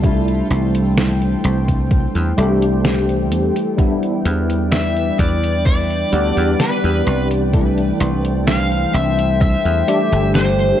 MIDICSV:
0, 0, Header, 1, 6, 480
1, 0, Start_track
1, 0, Key_signature, 0, "major"
1, 0, Tempo, 937500
1, 18, Time_signature, 4, 2, 24, 8
1, 5530, End_track
2, 0, Start_track
2, 0, Title_t, "Lead electric guitar"
2, 0, Program_c, 0, 29
2, 2416, Note_on_c, 0, 76, 109
2, 2657, Note_off_c, 0, 76, 0
2, 2659, Note_on_c, 0, 74, 98
2, 2893, Note_off_c, 0, 74, 0
2, 2899, Note_on_c, 0, 74, 103
2, 3382, Note_on_c, 0, 71, 77
2, 3393, Note_off_c, 0, 74, 0
2, 3724, Note_off_c, 0, 71, 0
2, 4339, Note_on_c, 0, 77, 115
2, 4577, Note_off_c, 0, 77, 0
2, 4580, Note_on_c, 0, 76, 98
2, 4813, Note_off_c, 0, 76, 0
2, 4819, Note_on_c, 0, 76, 102
2, 5279, Note_off_c, 0, 76, 0
2, 5298, Note_on_c, 0, 72, 76
2, 5530, Note_off_c, 0, 72, 0
2, 5530, End_track
3, 0, Start_track
3, 0, Title_t, "Ambient pad"
3, 0, Program_c, 1, 92
3, 0, Note_on_c, 1, 69, 68
3, 15, Note_on_c, 1, 52, 76
3, 16, Note_on_c, 1, 72, 70
3, 17, Note_on_c, 1, 79, 82
3, 1918, Note_off_c, 1, 69, 0
3, 1918, Note_off_c, 1, 72, 0
3, 1918, Note_off_c, 1, 79, 0
3, 1936, Note_on_c, 1, 71, 70
3, 1936, Note_on_c, 1, 79, 84
3, 1937, Note_on_c, 1, 74, 69
3, 3838, Note_off_c, 1, 71, 0
3, 3838, Note_off_c, 1, 74, 0
3, 3857, Note_on_c, 1, 69, 68
3, 3857, Note_on_c, 1, 72, 72
3, 5516, Note_off_c, 1, 52, 0
3, 5521, Note_off_c, 1, 72, 0
3, 5530, Note_off_c, 1, 69, 0
3, 5530, Note_off_c, 1, 79, 0
3, 5530, End_track
4, 0, Start_track
4, 0, Title_t, "Tine electric piano"
4, 0, Program_c, 2, 4
4, 0, Control_c, 2, 64, 127
4, 12, Note_on_c, 2, 55, 79
4, 17, Note_on_c, 2, 57, 72
4, 22, Note_on_c, 2, 62, 72
4, 24, Control_c, 2, 64, 0
4, 27, Note_on_c, 2, 64, 87
4, 119, Control_c, 2, 64, 127
4, 1187, Note_off_c, 2, 55, 0
4, 1190, Note_off_c, 2, 57, 0
4, 1192, Note_off_c, 2, 62, 0
4, 1195, Note_off_c, 2, 64, 0
4, 1214, Note_on_c, 2, 55, 90
4, 1217, Note_on_c, 2, 57, 84
4, 1220, Note_on_c, 2, 62, 81
4, 1223, Note_on_c, 2, 67, 98
4, 1381, Note_off_c, 2, 55, 0
4, 1382, Note_off_c, 2, 57, 0
4, 1384, Note_off_c, 2, 62, 0
4, 1385, Note_off_c, 2, 67, 0
4, 1930, Note_on_c, 2, 55, 79
4, 1935, Note_on_c, 2, 59, 72
4, 1940, Note_on_c, 2, 62, 70
4, 1944, Control_c, 2, 64, 0
4, 1945, Note_on_c, 2, 64, 84
4, 2030, Control_c, 2, 64, 127
4, 3106, Note_off_c, 2, 55, 0
4, 3109, Note_off_c, 2, 59, 0
4, 3111, Note_off_c, 2, 62, 0
4, 3114, Note_off_c, 2, 64, 0
4, 3134, Note_on_c, 2, 55, 94
4, 3136, Note_on_c, 2, 59, 83
4, 3139, Note_on_c, 2, 62, 85
4, 3142, Note_on_c, 2, 67, 99
4, 3301, Note_off_c, 2, 55, 0
4, 3302, Note_off_c, 2, 59, 0
4, 3303, Note_off_c, 2, 62, 0
4, 3305, Note_off_c, 2, 67, 0
4, 3851, Note_on_c, 2, 55, 79
4, 3856, Note_on_c, 2, 57, 72
4, 3861, Note_on_c, 2, 62, 73
4, 3866, Control_c, 2, 64, 0
4, 3866, Note_on_c, 2, 52, 90
4, 3958, Control_c, 2, 64, 127
4, 5027, Note_off_c, 2, 55, 0
4, 5030, Note_off_c, 2, 57, 0
4, 5032, Note_off_c, 2, 62, 0
4, 5035, Note_off_c, 2, 52, 0
4, 5055, Note_on_c, 2, 55, 91
4, 5057, Note_on_c, 2, 57, 82
4, 5060, Note_on_c, 2, 62, 85
4, 5063, Note_on_c, 2, 67, 99
4, 5221, Note_off_c, 2, 55, 0
4, 5223, Note_off_c, 2, 57, 0
4, 5224, Note_off_c, 2, 62, 0
4, 5225, Note_off_c, 2, 67, 0
4, 5530, End_track
5, 0, Start_track
5, 0, Title_t, "Slap bass"
5, 0, Program_c, 3, 36
5, 0, Note_on_c, 3, 36, 80
5, 210, Note_off_c, 3, 36, 0
5, 259, Note_on_c, 3, 36, 91
5, 690, Note_off_c, 3, 36, 0
5, 739, Note_on_c, 3, 36, 82
5, 1051, Note_off_c, 3, 36, 0
5, 1102, Note_on_c, 3, 40, 78
5, 1188, Note_off_c, 3, 40, 0
5, 1217, Note_on_c, 3, 36, 96
5, 1697, Note_off_c, 3, 36, 0
5, 1697, Note_on_c, 3, 40, 86
5, 1789, Note_off_c, 3, 40, 0
5, 2179, Note_on_c, 3, 40, 94
5, 2609, Note_off_c, 3, 40, 0
5, 2658, Note_on_c, 3, 40, 81
5, 3089, Note_off_c, 3, 40, 0
5, 3137, Note_on_c, 3, 38, 96
5, 3229, Note_off_c, 3, 38, 0
5, 3262, Note_on_c, 3, 40, 90
5, 3348, Note_off_c, 3, 40, 0
5, 3502, Note_on_c, 3, 40, 82
5, 3588, Note_off_c, 3, 40, 0
5, 3618, Note_on_c, 3, 36, 76
5, 4049, Note_off_c, 3, 36, 0
5, 4098, Note_on_c, 3, 36, 97
5, 4529, Note_off_c, 3, 36, 0
5, 4578, Note_on_c, 3, 36, 84
5, 4890, Note_off_c, 3, 36, 0
5, 4942, Note_on_c, 3, 40, 82
5, 5028, Note_off_c, 3, 40, 0
5, 5182, Note_on_c, 3, 31, 92
5, 5489, Note_off_c, 3, 31, 0
5, 5530, End_track
6, 0, Start_track
6, 0, Title_t, "Drums"
6, 19, Note_on_c, 9, 36, 116
6, 20, Note_on_c, 9, 42, 49
6, 70, Note_off_c, 9, 36, 0
6, 71, Note_off_c, 9, 42, 0
6, 144, Note_on_c, 9, 42, 25
6, 195, Note_off_c, 9, 42, 0
6, 259, Note_on_c, 9, 42, 88
6, 310, Note_off_c, 9, 42, 0
6, 383, Note_on_c, 9, 42, 52
6, 434, Note_off_c, 9, 42, 0
6, 499, Note_on_c, 9, 38, 119
6, 499, Note_on_c, 9, 42, 47
6, 551, Note_off_c, 9, 38, 0
6, 551, Note_off_c, 9, 42, 0
6, 623, Note_on_c, 9, 42, 25
6, 675, Note_off_c, 9, 42, 0
6, 738, Note_on_c, 9, 42, 87
6, 789, Note_off_c, 9, 42, 0
6, 862, Note_on_c, 9, 42, 49
6, 863, Note_on_c, 9, 36, 62
6, 913, Note_off_c, 9, 42, 0
6, 914, Note_off_c, 9, 36, 0
6, 977, Note_on_c, 9, 42, 50
6, 979, Note_on_c, 9, 36, 122
6, 1028, Note_off_c, 9, 42, 0
6, 1030, Note_off_c, 9, 36, 0
6, 1102, Note_on_c, 9, 42, 27
6, 1153, Note_off_c, 9, 42, 0
6, 1218, Note_on_c, 9, 42, 87
6, 1269, Note_off_c, 9, 42, 0
6, 1343, Note_on_c, 9, 42, 51
6, 1394, Note_off_c, 9, 42, 0
6, 1458, Note_on_c, 9, 38, 114
6, 1458, Note_on_c, 9, 42, 49
6, 1509, Note_off_c, 9, 38, 0
6, 1509, Note_off_c, 9, 42, 0
6, 1583, Note_on_c, 9, 42, 25
6, 1634, Note_off_c, 9, 42, 0
6, 1699, Note_on_c, 9, 42, 89
6, 1750, Note_off_c, 9, 42, 0
6, 1823, Note_on_c, 9, 42, 51
6, 1874, Note_off_c, 9, 42, 0
6, 1938, Note_on_c, 9, 36, 111
6, 1939, Note_on_c, 9, 42, 49
6, 1989, Note_off_c, 9, 36, 0
6, 1990, Note_off_c, 9, 42, 0
6, 2063, Note_on_c, 9, 42, 25
6, 2115, Note_off_c, 9, 42, 0
6, 2179, Note_on_c, 9, 42, 88
6, 2230, Note_off_c, 9, 42, 0
6, 2303, Note_on_c, 9, 42, 51
6, 2354, Note_off_c, 9, 42, 0
6, 2417, Note_on_c, 9, 38, 115
6, 2417, Note_on_c, 9, 42, 50
6, 2469, Note_off_c, 9, 38, 0
6, 2469, Note_off_c, 9, 42, 0
6, 2542, Note_on_c, 9, 42, 24
6, 2593, Note_off_c, 9, 42, 0
6, 2658, Note_on_c, 9, 36, 105
6, 2658, Note_on_c, 9, 42, 86
6, 2709, Note_off_c, 9, 36, 0
6, 2710, Note_off_c, 9, 42, 0
6, 2783, Note_on_c, 9, 42, 46
6, 2834, Note_off_c, 9, 42, 0
6, 2898, Note_on_c, 9, 36, 117
6, 2899, Note_on_c, 9, 42, 49
6, 2949, Note_off_c, 9, 36, 0
6, 2950, Note_off_c, 9, 42, 0
6, 3023, Note_on_c, 9, 42, 25
6, 3074, Note_off_c, 9, 42, 0
6, 3137, Note_on_c, 9, 42, 87
6, 3189, Note_off_c, 9, 42, 0
6, 3262, Note_on_c, 9, 42, 48
6, 3313, Note_off_c, 9, 42, 0
6, 3378, Note_on_c, 9, 38, 110
6, 3378, Note_on_c, 9, 42, 49
6, 3429, Note_off_c, 9, 38, 0
6, 3429, Note_off_c, 9, 42, 0
6, 3502, Note_on_c, 9, 42, 24
6, 3554, Note_off_c, 9, 42, 0
6, 3619, Note_on_c, 9, 42, 83
6, 3670, Note_off_c, 9, 42, 0
6, 3742, Note_on_c, 9, 42, 51
6, 3793, Note_off_c, 9, 42, 0
6, 3858, Note_on_c, 9, 36, 115
6, 3858, Note_on_c, 9, 42, 49
6, 3909, Note_off_c, 9, 42, 0
6, 3910, Note_off_c, 9, 36, 0
6, 3982, Note_on_c, 9, 42, 24
6, 4033, Note_off_c, 9, 42, 0
6, 4098, Note_on_c, 9, 42, 86
6, 4149, Note_off_c, 9, 42, 0
6, 4222, Note_on_c, 9, 42, 49
6, 4273, Note_off_c, 9, 42, 0
6, 4339, Note_on_c, 9, 38, 111
6, 4339, Note_on_c, 9, 42, 47
6, 4390, Note_off_c, 9, 38, 0
6, 4390, Note_off_c, 9, 42, 0
6, 4463, Note_on_c, 9, 42, 23
6, 4514, Note_off_c, 9, 42, 0
6, 4579, Note_on_c, 9, 42, 83
6, 4630, Note_off_c, 9, 42, 0
6, 4704, Note_on_c, 9, 42, 49
6, 4755, Note_off_c, 9, 42, 0
6, 4818, Note_on_c, 9, 36, 113
6, 4820, Note_on_c, 9, 42, 50
6, 4870, Note_off_c, 9, 36, 0
6, 4871, Note_off_c, 9, 42, 0
6, 4943, Note_on_c, 9, 42, 25
6, 4994, Note_off_c, 9, 42, 0
6, 5060, Note_on_c, 9, 42, 86
6, 5111, Note_off_c, 9, 42, 0
6, 5184, Note_on_c, 9, 42, 51
6, 5235, Note_off_c, 9, 42, 0
6, 5300, Note_on_c, 9, 38, 105
6, 5300, Note_on_c, 9, 42, 48
6, 5351, Note_off_c, 9, 38, 0
6, 5351, Note_off_c, 9, 42, 0
6, 5423, Note_on_c, 9, 42, 24
6, 5474, Note_off_c, 9, 42, 0
6, 5530, End_track
0, 0, End_of_file